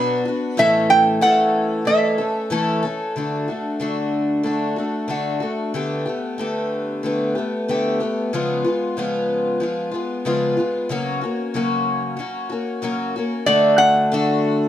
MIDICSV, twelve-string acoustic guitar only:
0, 0, Header, 1, 2, 480
1, 0, Start_track
1, 0, Key_signature, 2, "major"
1, 0, Tempo, 644468
1, 430, Time_signature, 4, 2, 24, 8
1, 10937, End_track
2, 0, Start_track
2, 0, Title_t, "Twelve-string acoustic guitar"
2, 0, Program_c, 0, 25
2, 0, Note_on_c, 0, 47, 84
2, 0, Note_on_c, 0, 54, 86
2, 0, Note_on_c, 0, 59, 84
2, 0, Note_on_c, 0, 62, 85
2, 0, Note_on_c, 0, 66, 101
2, 180, Note_off_c, 0, 66, 0
2, 189, Note_on_c, 0, 66, 49
2, 192, Note_off_c, 0, 47, 0
2, 195, Note_off_c, 0, 54, 0
2, 196, Note_off_c, 0, 59, 0
2, 198, Note_off_c, 0, 62, 0
2, 209, Note_on_c, 0, 62, 46
2, 216, Note_on_c, 0, 59, 39
2, 426, Note_on_c, 0, 45, 98
2, 429, Note_off_c, 0, 66, 0
2, 432, Note_on_c, 0, 52, 92
2, 433, Note_off_c, 0, 59, 0
2, 436, Note_on_c, 0, 57, 86
2, 439, Note_off_c, 0, 62, 0
2, 443, Note_on_c, 0, 69, 96
2, 444, Note_on_c, 0, 61, 85
2, 895, Note_off_c, 0, 45, 0
2, 897, Note_off_c, 0, 52, 0
2, 903, Note_on_c, 0, 45, 83
2, 906, Note_on_c, 0, 52, 75
2, 908, Note_off_c, 0, 57, 0
2, 911, Note_off_c, 0, 61, 0
2, 912, Note_off_c, 0, 69, 0
2, 917, Note_on_c, 0, 57, 84
2, 920, Note_on_c, 0, 61, 79
2, 921, Note_on_c, 0, 69, 81
2, 1370, Note_off_c, 0, 52, 0
2, 1379, Note_on_c, 0, 52, 62
2, 1383, Note_off_c, 0, 57, 0
2, 1385, Note_off_c, 0, 45, 0
2, 1389, Note_off_c, 0, 61, 0
2, 1392, Note_on_c, 0, 57, 66
2, 1394, Note_off_c, 0, 69, 0
2, 1398, Note_on_c, 0, 61, 63
2, 1405, Note_on_c, 0, 69, 68
2, 1615, Note_off_c, 0, 69, 0
2, 1623, Note_off_c, 0, 52, 0
2, 1624, Note_on_c, 0, 69, 49
2, 1626, Note_off_c, 0, 61, 0
2, 1629, Note_off_c, 0, 57, 0
2, 1635, Note_on_c, 0, 61, 42
2, 1648, Note_on_c, 0, 57, 43
2, 1863, Note_on_c, 0, 45, 80
2, 1865, Note_off_c, 0, 69, 0
2, 1867, Note_off_c, 0, 57, 0
2, 1869, Note_off_c, 0, 61, 0
2, 1869, Note_on_c, 0, 52, 83
2, 1876, Note_on_c, 0, 57, 92
2, 1878, Note_on_c, 0, 61, 89
2, 1880, Note_on_c, 0, 69, 77
2, 2096, Note_off_c, 0, 69, 0
2, 2105, Note_off_c, 0, 45, 0
2, 2105, Note_on_c, 0, 69, 59
2, 2108, Note_off_c, 0, 52, 0
2, 2111, Note_off_c, 0, 57, 0
2, 2112, Note_off_c, 0, 61, 0
2, 2122, Note_on_c, 0, 61, 57
2, 2134, Note_on_c, 0, 57, 46
2, 2346, Note_off_c, 0, 69, 0
2, 2350, Note_off_c, 0, 57, 0
2, 2352, Note_on_c, 0, 50, 63
2, 2354, Note_off_c, 0, 61, 0
2, 2359, Note_on_c, 0, 57, 60
2, 2366, Note_on_c, 0, 62, 62
2, 2370, Note_on_c, 0, 66, 65
2, 2582, Note_off_c, 0, 66, 0
2, 2590, Note_off_c, 0, 50, 0
2, 2591, Note_on_c, 0, 66, 39
2, 2593, Note_off_c, 0, 57, 0
2, 2596, Note_off_c, 0, 62, 0
2, 2605, Note_on_c, 0, 62, 35
2, 2616, Note_on_c, 0, 57, 36
2, 2826, Note_off_c, 0, 62, 0
2, 2827, Note_on_c, 0, 50, 54
2, 2829, Note_off_c, 0, 57, 0
2, 2829, Note_off_c, 0, 66, 0
2, 2835, Note_on_c, 0, 62, 65
2, 2838, Note_on_c, 0, 57, 55
2, 2845, Note_on_c, 0, 66, 72
2, 3299, Note_off_c, 0, 50, 0
2, 3302, Note_off_c, 0, 57, 0
2, 3302, Note_on_c, 0, 50, 51
2, 3305, Note_on_c, 0, 57, 51
2, 3316, Note_off_c, 0, 62, 0
2, 3316, Note_off_c, 0, 66, 0
2, 3319, Note_on_c, 0, 62, 53
2, 3328, Note_on_c, 0, 66, 53
2, 3538, Note_off_c, 0, 66, 0
2, 3545, Note_off_c, 0, 50, 0
2, 3547, Note_off_c, 0, 57, 0
2, 3547, Note_on_c, 0, 66, 39
2, 3553, Note_off_c, 0, 62, 0
2, 3563, Note_on_c, 0, 62, 37
2, 3572, Note_on_c, 0, 57, 33
2, 3782, Note_on_c, 0, 50, 63
2, 3783, Note_off_c, 0, 57, 0
2, 3788, Note_off_c, 0, 66, 0
2, 3790, Note_off_c, 0, 62, 0
2, 3792, Note_on_c, 0, 57, 61
2, 3799, Note_on_c, 0, 62, 65
2, 3803, Note_on_c, 0, 66, 66
2, 4014, Note_off_c, 0, 66, 0
2, 4023, Note_on_c, 0, 66, 39
2, 4025, Note_off_c, 0, 50, 0
2, 4029, Note_off_c, 0, 62, 0
2, 4031, Note_off_c, 0, 57, 0
2, 4038, Note_on_c, 0, 62, 35
2, 4045, Note_on_c, 0, 57, 35
2, 4266, Note_off_c, 0, 66, 0
2, 4267, Note_off_c, 0, 57, 0
2, 4274, Note_off_c, 0, 62, 0
2, 4275, Note_on_c, 0, 50, 63
2, 4276, Note_on_c, 0, 57, 64
2, 4282, Note_on_c, 0, 59, 70
2, 4290, Note_on_c, 0, 67, 67
2, 4502, Note_off_c, 0, 67, 0
2, 4511, Note_on_c, 0, 67, 40
2, 4512, Note_off_c, 0, 50, 0
2, 4513, Note_off_c, 0, 57, 0
2, 4514, Note_off_c, 0, 59, 0
2, 4523, Note_on_c, 0, 59, 37
2, 4535, Note_on_c, 0, 57, 33
2, 4751, Note_off_c, 0, 67, 0
2, 4751, Note_on_c, 0, 50, 60
2, 4752, Note_off_c, 0, 57, 0
2, 4757, Note_off_c, 0, 59, 0
2, 4761, Note_on_c, 0, 57, 64
2, 4770, Note_on_c, 0, 59, 63
2, 4772, Note_on_c, 0, 67, 73
2, 5227, Note_off_c, 0, 50, 0
2, 5236, Note_on_c, 0, 50, 53
2, 5237, Note_off_c, 0, 57, 0
2, 5242, Note_off_c, 0, 67, 0
2, 5244, Note_on_c, 0, 57, 56
2, 5252, Note_off_c, 0, 59, 0
2, 5255, Note_on_c, 0, 59, 61
2, 5260, Note_on_c, 0, 67, 57
2, 5466, Note_off_c, 0, 67, 0
2, 5474, Note_off_c, 0, 50, 0
2, 5475, Note_on_c, 0, 67, 40
2, 5478, Note_off_c, 0, 57, 0
2, 5484, Note_off_c, 0, 59, 0
2, 5496, Note_on_c, 0, 59, 38
2, 5504, Note_on_c, 0, 57, 31
2, 5714, Note_off_c, 0, 67, 0
2, 5720, Note_off_c, 0, 57, 0
2, 5722, Note_off_c, 0, 59, 0
2, 5723, Note_on_c, 0, 50, 58
2, 5729, Note_on_c, 0, 57, 66
2, 5730, Note_on_c, 0, 59, 68
2, 5739, Note_on_c, 0, 67, 77
2, 5950, Note_off_c, 0, 67, 0
2, 5958, Note_off_c, 0, 50, 0
2, 5959, Note_on_c, 0, 67, 46
2, 5961, Note_off_c, 0, 57, 0
2, 5962, Note_off_c, 0, 59, 0
2, 5970, Note_on_c, 0, 59, 37
2, 5981, Note_on_c, 0, 57, 39
2, 6197, Note_off_c, 0, 67, 0
2, 6202, Note_off_c, 0, 59, 0
2, 6204, Note_on_c, 0, 49, 67
2, 6207, Note_off_c, 0, 57, 0
2, 6207, Note_on_c, 0, 53, 66
2, 6213, Note_on_c, 0, 56, 79
2, 6217, Note_on_c, 0, 59, 69
2, 6220, Note_on_c, 0, 65, 70
2, 6430, Note_off_c, 0, 65, 0
2, 6439, Note_off_c, 0, 49, 0
2, 6439, Note_on_c, 0, 65, 48
2, 6441, Note_off_c, 0, 53, 0
2, 6442, Note_off_c, 0, 59, 0
2, 6443, Note_off_c, 0, 56, 0
2, 6451, Note_on_c, 0, 59, 37
2, 6466, Note_on_c, 0, 56, 33
2, 6677, Note_off_c, 0, 65, 0
2, 6679, Note_on_c, 0, 49, 58
2, 6682, Note_off_c, 0, 56, 0
2, 6683, Note_off_c, 0, 59, 0
2, 6686, Note_on_c, 0, 53, 65
2, 6691, Note_on_c, 0, 56, 64
2, 6693, Note_on_c, 0, 59, 68
2, 6695, Note_on_c, 0, 65, 76
2, 7141, Note_off_c, 0, 53, 0
2, 7150, Note_on_c, 0, 53, 54
2, 7152, Note_off_c, 0, 56, 0
2, 7157, Note_off_c, 0, 49, 0
2, 7161, Note_on_c, 0, 56, 54
2, 7164, Note_off_c, 0, 59, 0
2, 7165, Note_off_c, 0, 65, 0
2, 7173, Note_on_c, 0, 59, 47
2, 7174, Note_on_c, 0, 65, 54
2, 7376, Note_off_c, 0, 65, 0
2, 7385, Note_on_c, 0, 65, 43
2, 7393, Note_off_c, 0, 53, 0
2, 7394, Note_off_c, 0, 59, 0
2, 7398, Note_off_c, 0, 56, 0
2, 7403, Note_on_c, 0, 59, 38
2, 7412, Note_on_c, 0, 56, 38
2, 7630, Note_off_c, 0, 65, 0
2, 7634, Note_off_c, 0, 56, 0
2, 7634, Note_on_c, 0, 49, 69
2, 7636, Note_off_c, 0, 59, 0
2, 7640, Note_on_c, 0, 53, 71
2, 7643, Note_on_c, 0, 56, 68
2, 7645, Note_on_c, 0, 59, 76
2, 7649, Note_on_c, 0, 65, 77
2, 7863, Note_off_c, 0, 65, 0
2, 7872, Note_on_c, 0, 65, 41
2, 7875, Note_off_c, 0, 49, 0
2, 7877, Note_off_c, 0, 59, 0
2, 7878, Note_off_c, 0, 53, 0
2, 7879, Note_off_c, 0, 56, 0
2, 7885, Note_on_c, 0, 59, 38
2, 7894, Note_on_c, 0, 56, 33
2, 8113, Note_on_c, 0, 49, 69
2, 8114, Note_off_c, 0, 65, 0
2, 8121, Note_off_c, 0, 59, 0
2, 8121, Note_on_c, 0, 54, 71
2, 8123, Note_off_c, 0, 56, 0
2, 8126, Note_on_c, 0, 58, 78
2, 8129, Note_on_c, 0, 61, 73
2, 8133, Note_on_c, 0, 66, 79
2, 8344, Note_off_c, 0, 66, 0
2, 8353, Note_on_c, 0, 66, 40
2, 8354, Note_off_c, 0, 49, 0
2, 8358, Note_off_c, 0, 54, 0
2, 8359, Note_off_c, 0, 61, 0
2, 8361, Note_off_c, 0, 58, 0
2, 8368, Note_on_c, 0, 61, 37
2, 8379, Note_on_c, 0, 58, 34
2, 8594, Note_off_c, 0, 66, 0
2, 8595, Note_on_c, 0, 49, 58
2, 8598, Note_off_c, 0, 58, 0
2, 8600, Note_on_c, 0, 54, 60
2, 8602, Note_off_c, 0, 61, 0
2, 8607, Note_on_c, 0, 58, 62
2, 8611, Note_on_c, 0, 61, 68
2, 8613, Note_on_c, 0, 66, 61
2, 9052, Note_off_c, 0, 54, 0
2, 9061, Note_on_c, 0, 54, 47
2, 9068, Note_off_c, 0, 58, 0
2, 9075, Note_off_c, 0, 49, 0
2, 9075, Note_off_c, 0, 61, 0
2, 9077, Note_on_c, 0, 58, 49
2, 9079, Note_off_c, 0, 66, 0
2, 9084, Note_on_c, 0, 61, 54
2, 9088, Note_on_c, 0, 66, 49
2, 9298, Note_off_c, 0, 66, 0
2, 9307, Note_on_c, 0, 66, 43
2, 9308, Note_off_c, 0, 54, 0
2, 9314, Note_off_c, 0, 61, 0
2, 9316, Note_off_c, 0, 58, 0
2, 9323, Note_on_c, 0, 61, 38
2, 9329, Note_on_c, 0, 58, 33
2, 9547, Note_on_c, 0, 49, 60
2, 9549, Note_off_c, 0, 58, 0
2, 9550, Note_off_c, 0, 66, 0
2, 9552, Note_off_c, 0, 61, 0
2, 9552, Note_on_c, 0, 54, 62
2, 9558, Note_on_c, 0, 58, 67
2, 9561, Note_on_c, 0, 61, 64
2, 9566, Note_on_c, 0, 66, 71
2, 9790, Note_off_c, 0, 49, 0
2, 9791, Note_off_c, 0, 66, 0
2, 9792, Note_off_c, 0, 54, 0
2, 9796, Note_off_c, 0, 58, 0
2, 9797, Note_off_c, 0, 61, 0
2, 9800, Note_on_c, 0, 66, 43
2, 9813, Note_on_c, 0, 61, 39
2, 9822, Note_on_c, 0, 58, 37
2, 10028, Note_on_c, 0, 50, 91
2, 10031, Note_off_c, 0, 58, 0
2, 10033, Note_off_c, 0, 61, 0
2, 10034, Note_on_c, 0, 57, 95
2, 10036, Note_off_c, 0, 66, 0
2, 10036, Note_on_c, 0, 62, 95
2, 10045, Note_on_c, 0, 66, 89
2, 10505, Note_off_c, 0, 50, 0
2, 10513, Note_off_c, 0, 62, 0
2, 10514, Note_on_c, 0, 50, 81
2, 10517, Note_off_c, 0, 66, 0
2, 10519, Note_off_c, 0, 57, 0
2, 10522, Note_on_c, 0, 57, 73
2, 10529, Note_on_c, 0, 62, 81
2, 10533, Note_on_c, 0, 66, 90
2, 10937, Note_off_c, 0, 50, 0
2, 10937, Note_off_c, 0, 57, 0
2, 10937, Note_off_c, 0, 62, 0
2, 10937, Note_off_c, 0, 66, 0
2, 10937, End_track
0, 0, End_of_file